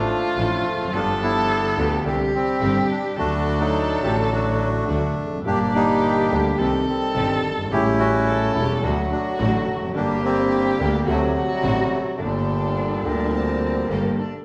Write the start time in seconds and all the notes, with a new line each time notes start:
Already playing: F3 A3 D4 F4
0.37 A1 A2 F3 A3 D4 F4 A4
0.65 F1
0.73 E2
0.80 F2
0.87 F#2
0.92 G1 G2 F3 B3 D4 F4 G4 A4
1.23 B3 E4
1.76 D2 D3 F3 B3 D4 F4 G4
2.04 C2 C3 D3 G3 C4 D4 G4
2.35 G3 C4
2.61 G1 G2 D3 G3 C4 D4 G4
2.91 D4
3.17 D2 F#3 A3 D4 F#4 A4 D5
3.60 F#3 A3 D#4
4.00 A1 A2 D3 F#3 A3 D4 F#4 G4
4.04 F#4
4.32 A3 D4 F#4
4.87 D2 D3 F#3 A3 D4 F#4
5.17 F1
5.24 E2
5.30 F2
5.38 F#2
5.43 G1 G2 A#2 G3 A#3 D4 G4 D5
5.47 G4
5.75 G3 A#3 D#4
6.30 D2 D3 G3 A#3 D4 G4
6.58 C2 C3 D#3 G3 C4 D#4 G4 A4
6.88 D#3 G3 C4
7.15 G1 G2 D#3 G3 C4 D#4 G4
7.43 G1
7.51 F#1
7.57 G1
7.65 G#1
7.70 A1 A2 C#3 G3 A3 C#4 E4 G4
7.74 E4
7.99 C#4 F#4
8.27 A4
8.54 E1 E2 C#3 G3 A3 C#4 E4 G4
8.82 D2 D3 F#3 A3 D4 F#4
9.11 F#3 A3 D4
9.38 A1 A2 D3 F#3 A3 D4 F#4
9.68 F1
9.74 E2
9.81 F2
9.88 F#2
9.93 G1 G2 D3 G3 A#3 D4 G4
10.25 G3 C4
10.79 D2 D3 G3 A#3 D4 G4
11.07 D2 C3 D3 F#3 A3 C4 D4 F#4
11.37 A3
11.52 C3 G3
11.62 A1 A2 D3 A3 C4 D4 F#4
11.94 A3
12.15 D3 A3 D4
12.19 G1 G2 A#2 G3 A3 A#3 G4 A4
12.23 D3
12.76 C5
13.02 D2 D3 G3 A#3 G4 A#4 A5
13.06 G4
13.32 C4
13.90 G1 G2 D3 A3 A#3 G4 A4
14.19 D4 A4